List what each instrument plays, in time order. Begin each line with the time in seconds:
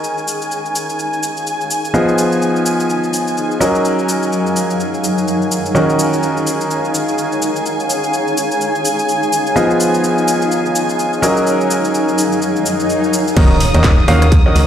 Already playing: grand piano D#3 C#4 F#4 A#4 D#5, ambient pad D#4 G#4 C#5 F5, violin section G#5
0.04 shaker
0.18 shaker
0.28 shaker
0.42 shaker
0.52 shaker
0.66 shaker
0.75 shaker
0.89 shaker
0.99 shaker
1.13 shaker
1.23 shaker
1.37 shaker
1.47 shaker
1.61 shaker
1.71 shaker
1.85 shaker
1.94 grand piano F3 B3 F4 G#4 D#5, shaker
2.08 shaker
2.18 shaker
2.32 shaker
2.42 shaker
2.56 shaker
2.66 shaker
2.80 shaker
2.90 shaker
3.04 shaker
3.13 shaker
3.27 shaker
3.37 shaker
3.51 shaker
3.60 grand piano F#3 C#4 F#4 A#4 D#5, ambient pad F#3, shaker
3.75 shaker
3.85 shaker
3.99 shaker
4.09 shaker
4.23 shaker
4.32 shaker
4.47 shaker
4.56 shaker
4.70 shaker
4.80 shaker
4.94 shaker
5.04 shaker
5.18 shaker
5.28 shaker
5.42 shaker
5.52 shaker
5.66 shaker
5.75 grand piano D#3 C#4 F#4 A#4 D#5, violin section G#5, shaker
5.89 shaker
5.99 shaker
6.13 shaker
6.23 shaker
6.37 shaker
6.47 shaker
6.61 shaker
6.71 shaker
6.85 shaker
6.94 shaker
7.08 shaker
7.18 shaker
7.32 shaker
7.42 shaker
7.56 shaker
7.66 shaker
7.80 shaker
7.90 shaker
8.04 shaker
8.13 shaker
8.28 shaker
8.37 shaker
8.51 shaker
8.61 shaker
8.75 shaker
8.85 shaker
8.99 shaker
9.09 shaker
9.23 shaker
9.33 shaker
9.47 shaker
9.56 grand piano F3 B3 F4 G#4 D#5, shaker
9.70 shaker
9.80 shaker
9.94 shaker
10.04 shaker
10.18 shaker
10.28 shaker
10.42 shaker
10.52 shaker
10.66 shaker
10.75 shaker
10.89 shaker
10.99 shaker
11.13 shaker
11.22 grand piano F#3 C#4 F#4 A#4 D#5, ambient pad F#3, shaker
11.37 shaker
11.47 shaker
11.61 shaker
11.71 shaker
11.85 shaker
11.94 shaker
12.08 shaker
12.18 shaker
12.32 shaker
12.41 swell, shaker
12.56 shaker
12.66 shaker
12.80 shaker
12.90 shaker
13.04 shaker
13.13 shaker
13.27 shaker
13.37 fm bass D#2, grand piano D#3 C#4 F#4 A#4 D#5, violin section D#6, kick, closed hi-hat, crash, ride, impact
13.60 snare, open hi-hat, ride
13.74 fm bass D#2, grand piano D#3 C#4 F#4 A#4 D#5, closed hi-hat
13.84 fm bass D#2, kick, snare, clap, closed hi-hat, ride
13.98 snare
14.08 fm bass D#2, grand piano D#3 C#4 F#4 A#4 F5, open hi-hat, ride
14.22 cross-stick, closed hi-hat
14.32 kick, closed hi-hat, ride
14.46 grand piano D#3 C#4 F#4 A#4 D#5
14.56 fm bass C#2, snare, open hi-hat, ride